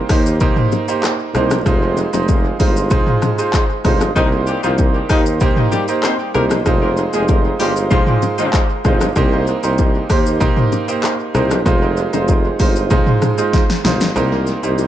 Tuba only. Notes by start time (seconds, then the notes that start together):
0.10 D#2
1.35 C2
1.66 F1
2.13 F1
2.60 G1
3.85 G1
4.16 C2
4.64 C2
5.10 D#2
6.35 C2
6.66 F1
7.14 F1
7.60 G1
8.85 G1
9.16 C2
9.63 C2
10.10 D#2
11.35 C2
11.66 F1
12.13 F1
12.60 G1
13.85 G1
14.16 C2
14.63 C2